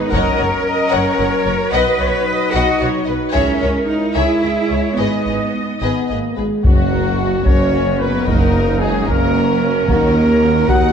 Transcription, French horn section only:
0.12 3.31 F#3 medium
0.12 1.57 C#4 medium
1.74 3.31 D#4 medium
3.34 5.72 G#3 medium
3.34 4.94 E4 medium
4.98 5.72 D#4 soft
5.81 6.07 B3 soft
6.10 6.37 A#3 soft
6.36 6.63 G#3 soft
6.66 7.42 F#3 medium
7.44 7.99 C#4 medium
8.00 8.27 B3 medium
8.27 8.80 A#3 medium
8.81 9.08 G#3 medium
9.06 9.68 A#3 medium
9.85 10.66 A#3 medium
10.68 10.92 F#4 medium

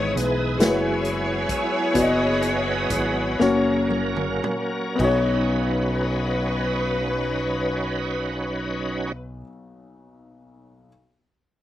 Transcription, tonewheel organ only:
0.00 0.60 E3 medium
0.00 0.59 B3 medium
0.00 0.59 G#4 medium
0.00 0.60 D#5 medium
0.60 1.94 F#3 medium
0.60 1.94 B3 medium
0.60 1.95 E4 soft
0.60 1.95 G#4 medium
1.95 3.38 F#3 medium
1.95 3.40 B3 medium
1.95 3.40 B4 medium
1.95 3.40 D#5 medium
3.39 4.96 F#3 medium
3.39 4.99 A#3 medium
3.39 4.96 C#4 medium
3.39 4.99 A#4 medium
4.97 9.12 F#3 medium
4.97 9.12 C#4 medium
4.97 9.13 D#4 medium
4.97 9.12 B4 medium

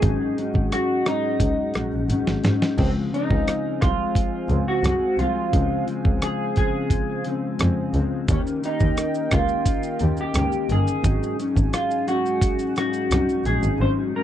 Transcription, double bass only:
0.03 0.11 G#1 loud
0.55 0.63 G#1 medium
1.40 1.48 C#2 medium
1.75 1.81 A#1 soft
1.93 2.01 A#1 medium
2.10 2.15 G#1 soft
2.27 2.35 G#1 medium
2.44 2.52 G#2 medium
2.78 2.86 C#2 loud
3.31 3.39 C#2 medium
3.83 3.91 C2 medium
4.49 4.57 C#2 medium
4.83 4.91 C2 medium
5.18 5.26 C2 medium
5.54 5.62 C#2 loud
6.05 6.13 C#2 medium
7.60 7.68 F2 medium
7.94 8.02 C#2 medium
8.28 8.36 D#2 loud
8.81 8.89 D#2 medium
9.32 9.40 C#2 medium
10.01 10.09 D#2 medium
10.35 10.43 C#2 medium
10.70 10.78 G1 medium
11.04 11.12 G#1 loud
11.57 11.65 G#1 medium
13.11 13.19 C2 medium
13.45 13.53 A#1 medium
13.62 13.70 G#1 medium
13.79 13.87 G#1 medium

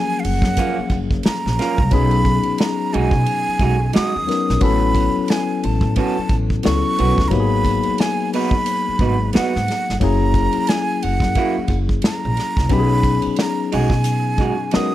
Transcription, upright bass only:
0.25 0.41 F#1 medium
0.43 0.55 F#2 loud
0.79 muted upright bass stroke soft
0.91 1.19 F#1 medium
1.46 1.57 A#1 medium
1.79 1.90 C2 loud
1.93 2.37 B1 loud
2.47 muted upright bass stroke soft
2.95 3.11 B1 medium
3.12 3.24 B2 loud
3.48 muted upright bass stroke soft
3.61 3.89 B1 loud
3.96 muted upright bass stroke soft
4.16 4.27 D#2 medium
4.50 4.61 A#1 medium
4.63 5.07 A1 loud
5.17 muted upright bass stroke soft
5.65 5.80 A1 medium
5.82 5.94 A2 loud
6.18 muted upright bass stroke soft
6.31 6.58 A1 medium
6.66 6.82 C#2 medium
7.00 7.15 B1 medium
7.19 7.30 C#2 medium
7.33 7.77 G#1 loud
7.88 muted upright bass stroke soft
8.89 muted upright bass stroke soft
9.00 9.28 G#1 medium
9.36 muted upright bass stroke soft
9.56 9.67 G#2 loud
9.90 10.00 G1 medium
10.02 10.46 F#1 loud
10.57 muted upright bass stroke soft
11.04 11.20 F#1 medium
11.22 11.33 F#2 loud
11.58 muted upright bass stroke soft
11.70 11.98 F#1 medium
12.05 muted upright bass stroke soft
12.25 12.36 A#1 medium
12.58 12.69 C2 medium
12.71 13.16 B1 loud
13.26 muted upright bass stroke soft
13.74 13.89 B1 medium
13.91 14.47 B2 loud
14.75 muted upright bass stroke soft

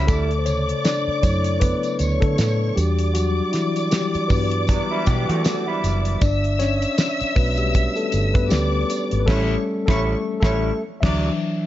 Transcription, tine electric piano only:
0.00 0.11 G3 soft
0.00 0.11 C#4 medium
0.00 0.10 E4 medium
0.00 0.11 C#5 loud
0.07 0.39 A3 medium
0.07 0.38 A4 medium
0.39 0.46 C5 medium
0.46 0.83 C#3 medium
0.46 0.82 C#5 loud
0.84 1.21 D4 medium
0.84 1.24 D5 loud
1.22 2.34 C#3 soft
1.22 2.34 F#3 medium
1.22 1.41 A3 medium
1.22 2.35 E4 medium
1.22 1.40 C#5 medium
1.60 2.19 B3 medium
1.60 2.23 B4 loud
2.20 2.73 A3 medium
2.20 2.78 A4 loud
2.76 3.13 G3 medium
2.76 3.88 D4 medium
2.76 3.13 F#4 medium
2.76 3.16 G4 medium
3.14 3.51 F#3 medium
3.14 3.54 F#4 loud
3.52 3.90 E3 medium
3.52 3.92 E4 medium
3.90 4.28 G3 medium
3.90 4.27 G4 medium
4.28 4.64 G3 soft
4.28 5.80 B3 medium
4.28 4.64 D4 soft
4.28 4.65 F#4 medium
4.28 5.78 B4 medium
6.22 6.58 D4 medium
6.22 6.61 D5 loud
6.59 7.33 C#4 medium
6.59 7.39 C#5 loud
7.36 7.97 A3 medium
7.36 7.58 B3 medium
7.36 9.24 F#4 medium
7.36 7.57 B4 loud
7.58 7.95 G3 medium
7.58 7.98 G4 medium
7.96 8.33 A3 medium
7.96 8.36 A4 medium
8.34 8.51 B3 medium
8.34 8.51 B4 loud
8.49 9.18 G3 medium
8.49 9.23 G4 medium
9.20 9.27 B4 medium
9.26 9.54 G3 loud
9.26 9.55 A3 loud
9.26 9.55 C#4 loud
9.26 9.54 A4 loud
9.86 10.13 A3 loud
9.86 10.12 A4 loud
10.40 10.70 A3 medium
10.40 10.68 A4 loud
11.01 11.27 E3 medium
11.01 11.28 F#3 medium
11.01 11.28 D4 medium
11.01 11.27 E5 loud

